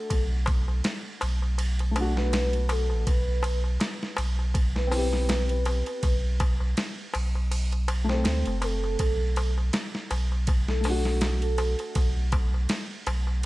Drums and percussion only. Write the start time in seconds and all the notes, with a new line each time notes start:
0.10 kick, ride, darbuka tek
0.46 kick, ride, darbuka tek
0.68 darbuka tek
0.84 snare, ride, darbuka tek
1.21 ride, darbuka tek
1.42 darbuka tek
1.58 ride, darbuka tek
1.79 ride, darbuka tek
1.96 ride, darbuka tek
2.17 snare, darbuka tek
2.33 snare, ride, darbuka tek
2.53 ride
2.69 ride, darbuka tek
2.90 darbuka tek
3.07 kick, ride, darbuka tek
3.43 ride, darbuka tek
3.64 darbuka tek
3.80 snare, ride, darbuka tek
4.03 snare
4.17 ride, darbuka tek
4.39 darbuka tek
4.54 kick, ride, darbuka tek
4.76 snare, darbuka tek
4.91 open hi-hat, darbuka tek
5.13 snare, darbuka tek
5.29 snare, ride, darbuka tek
5.49 ride
5.65 ride, darbuka tek
5.86 ride, darbuka tek
6.03 kick, ride, darbuka tek
6.40 kick, ride, darbuka tek
6.60 darbuka tek
6.77 snare, ride, darbuka tek
7.14 ride, darbuka tek
7.35 darbuka tek
7.51 ride, darbuka tek
7.72 ride, darbuka tek
7.88 ride, darbuka tek
8.09 snare, darbuka tek
8.24 snare, ride, darbuka tek
8.46 ride, darbuka tek
8.62 ride, darbuka tek
8.84 darbuka tek
8.99 kick, ride, darbuka tek
9.36 ride, darbuka tek
9.58 darbuka tek
9.73 snare, ride, darbuka tek
9.95 snare
10.11 ride, darbuka tek
10.32 darbuka tek
10.47 kick, ride, darbuka tek
10.68 snare, darbuka tek
10.84 open hi-hat, darbuka tek
11.05 snare, darbuka tek
11.21 snare, ride, darbuka tek
11.42 ride
11.58 ride, darbuka tek
11.79 ride, darbuka tek
11.95 kick, ride, darbuka tek
12.32 kick, ride, darbuka tek
12.54 darbuka tek
12.69 snare, ride, darbuka tek
13.07 ride, darbuka tek
13.27 darbuka tek